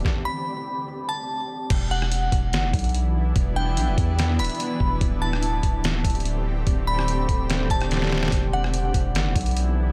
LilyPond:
<<
  \new Staff \with { instrumentName = "Synth bell" } { \time 4/4 \key e \minor \tempo 4 = 145 r8 b''2 a''4. | r8 fis''2~ fis''8 r4 | r8 g''2 b''4. | r8 a''2~ a''8 r4 |
r8 b''2 a''4. | r8 fis''2~ fis''8 r4 | }
  \new Staff \with { instrumentName = "Synth texture" } { \time 4/4 \key e \minor << { d''1 | d''1~ | d''1~ | d''1~ |
d''1~ | d''1 | } \\ { <c' g'>1 | <fis g>1~ | <fis g>1 | <c' g'>1~ |
<c' g'>1 | <fis g>1 | } >> }
  \new Staff \with { instrumentName = "Ambient pad" } { \time 4/4 \key e \minor r1 | <e b d' e'>1~ | <e b d' e'>1 | <d a c' g'>1~ |
<d a c' g'>1 | <e b d' e'>1 | }
  \new Staff \with { instrumentName = "808-style bass" } { \clef bass \time 4/4 \key e \minor r1 | e,,4. e,,8 g,,16 e,,16 b,,4. | e,,4 b,,16 e,,16 e,4 d,,16 r8. e,,8 | d,,4. d,,4 d,,4. |
d,,4. d,,4 d,,4. | e,,4. e,,8 g,,16 e,,16 b,,4. | }
  \new DrumStaff \with { instrumentName = "Drums" } \drummode { \time 4/4 <bd sn>4 r4 r4 r4 | <cymc hh bd>8. ss16 hh8 <hh bd>8 <hh sn>8 <hh bd>32 hh32 hh32 hh32 hh4 | <hh bd>4 hh8 <hh bd>8 <hh sn>8 hh32 hh32 hh32 hh32 hh8 bd8 | <hh bd>8. ss16 hh8 <hh bd>8 <hh sn>8 <hh bd>32 hh32 hh32 hh32 hh4 |
<hh bd>8. ss16 hh8 <hh bd>8 <hh sn>8 <hh bd>16 <hh ss>16 <hh sn>32 sn32 sn32 sn32 sn32 sn32 sn32 sn32 | <hh bd>8. ss16 hh8 <hh bd>8 <hh sn>8 <hh bd>32 hh32 hh32 hh32 hh4 | }
>>